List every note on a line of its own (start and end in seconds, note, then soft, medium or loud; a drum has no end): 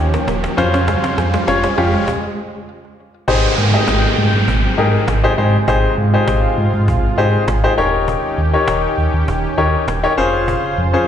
0.00 0.17 D#2 loud
0.00 0.56 D#3 medium
0.00 0.56 C#4 medium
0.00 0.56 G4 medium
0.00 riser medium
0.14 0.27 A#3 medium
0.14 cajon slap loud
0.28 0.47 D#1 loud
0.28 0.42 A#3 medium
0.28 cajon bass loud
0.28 cajon slap loud
0.44 cajon slap loud
0.57 0.97 F2 loud
0.57 2.06 C#3 medium
0.57 1.30 C#4 medium
0.57 1.30 F4 medium
0.57 2.06 F4 medium
0.57 2.06 C5 medium
0.57 1.31 C5 loud
0.57 cajon slap loud
0.74 0.87 C#4 medium
0.74 cajon slap loud
0.88 1.02 G#3 loud
0.88 cajon bass loud
0.88 cajon slap loud
1.04 1.17 C4 medium
1.04 cajon slap loud
1.18 1.37 F2 loud
1.18 1.32 G#3 medium
1.18 cajon slap loud
1.34 1.47 G#3 medium
1.34 cajon slap loud
1.47 1.67 F1 loud
1.47 1.65 C#4 medium
1.47 1.65 F4 medium
1.47 1.65 C#5 loud
1.47 cajon slap loud
1.64 1.77 C#4 medium
1.64 cajon slap loud
1.78 1.97 F2 loud
1.78 2.08 C#4 medium
1.78 2.08 F4 medium
1.78 1.92 F4 medium
1.78 2.08 G4 medium
1.94 2.07 G#3 medium
1.94 cajon slap soft
2.08 cajon bass loud
2.08 cajon slap medium
3.28 3.48 G#1 loud
3.28 7.74 C3 medium
3.28 7.74 G#3 medium
3.28 3.53 D#4 medium
3.28 3.53 G4 medium
3.28 3.53 G#4 medium
3.28 3.53 C5 loud
3.28 5.65 G5 medium
3.28 cajon bass loud
3.28 downlifter medium
3.44 cajon slap soft
3.58 3.77 G#2 loud
3.74 4.32 D#4 medium
3.74 4.32 G4 medium
3.74 4.32 G#4 medium
3.74 4.32 D#5 medium
3.74 cajon slap soft
3.88 4.07 G#1 medium
3.88 cajon bass loud
3.88 cajon slap loud
4.18 4.28 G#2 loud
4.34 4.43 G#2 loud
4.34 cajon slap soft
4.48 4.68 G#1 loud
4.48 cajon bass loud
4.64 cajon slap soft
4.78 4.97 G#2 loud
4.78 5.03 D#4 medium
4.78 5.03 G4 medium
4.78 5.03 G#4 medium
4.78 5.03 A#4 loud
4.94 cajon slap soft
5.08 5.27 G#1 loud
5.08 cajon bass loud
5.08 cajon slap loud
5.24 5.32 D#4 medium
5.24 5.32 G4 medium
5.24 5.32 G#4 medium
5.24 5.32 C5 loud
5.38 5.57 G#2 loud
5.38 5.55 D#4 medium
5.38 5.55 G4 medium
5.38 5.55 G#4 medium
5.38 5.56 C5 medium
5.38 cajon slap soft
5.54 cajon slap soft
5.68 5.87 G#1 loud
5.68 5.93 D#4 medium
5.68 7.76 F4 medium
5.68 5.93 G4 medium
5.68 5.93 G#4 medium
5.68 5.93 C5 loud
5.68 cajon bass loud
5.84 cajon slap soft
5.98 6.17 G#2 loud
5.98 cajon slap soft
6.14 6.72 D#4 medium
6.14 6.72 G4 medium
6.14 6.72 G#4 medium
6.14 6.72 C5 medium
6.14 cajon slap soft
6.28 6.47 G#1 loud
6.28 cajon bass loud
6.28 cajon slap loud
6.44 cajon slap soft
6.58 6.68 G#2 loud
6.58 cajon slap soft
6.74 6.90 G#2 loud
6.74 cajon slap soft
6.88 7.08 G#1 loud
6.88 cajon bass loud
7.04 cajon slap soft
7.18 7.37 G#2 loud
7.18 7.43 D#4 medium
7.18 7.43 G4 medium
7.18 7.43 G#4 medium
7.18 7.43 C5 loud
7.18 cajon slap soft
7.34 cajon slap soft
7.48 7.67 G#1 loud
7.48 cajon bass loud
7.48 cajon slap loud
7.64 7.72 D#4 medium
7.64 7.72 G4 medium
7.64 7.72 G#4 medium
7.64 7.72 C5 loud
7.64 cajon slap soft
7.78 8.17 D#1 loud
7.78 10.15 D#3 medium
7.78 10.15 C#4 medium
7.78 8.38 D#4 medium
7.78 8.38 G4 medium
7.78 10.15 G4 medium
7.78 8.38 A#4 medium
7.78 8.38 C#5 loud
7.78 cajon slap soft
7.94 cajon slap soft
8.08 cajon bass loud
8.24 cajon slap soft
8.38 8.57 D#2 loud
8.38 cajon slap soft
8.53 9.12 D#4 medium
8.53 9.12 G4 medium
8.53 9.12 A#4 medium
8.53 9.12 C#5 medium
8.53 cajon slap soft
8.68 8.87 D#1 loud
8.68 cajon bass loud
8.68 cajon slap loud
8.84 cajon slap soft
8.98 9.08 D#2 loud
8.98 cajon slap soft
9.14 9.23 D#2 loud
9.14 cajon slap soft
9.28 9.48 D#1 loud
9.28 cajon bass loud
9.44 cajon slap soft
9.58 9.77 D#2 loud
9.58 9.83 D#4 medium
9.58 9.83 G4 medium
9.58 9.83 A#4 medium
9.58 9.83 C#5 medium
9.74 cajon slap soft
9.88 10.07 D#1 loud
9.88 cajon bass loud
9.88 cajon slap loud
10.03 10.11 D#4 medium
10.03 10.11 G4 medium
10.03 10.12 A#4 medium
10.03 10.12 C#5 loud
10.03 cajon slap soft
10.17 10.57 F1 loud
10.17 11.08 C#3 medium
10.17 10.78 C#4 medium
10.17 10.78 F4 medium
10.17 11.08 F4 medium
10.17 10.78 G#4 medium
10.17 10.78 C5 loud
10.17 11.08 C5 medium
10.17 cajon slap soft
10.34 cajon slap soft
10.48 cajon bass loud
10.64 cajon slap soft
10.78 10.97 F2 loud
10.78 cajon slap soft
10.93 11.08 C#4 medium
10.93 11.08 F4 medium
10.93 11.08 G#4 medium
10.93 11.08 C5 medium
10.93 cajon slap soft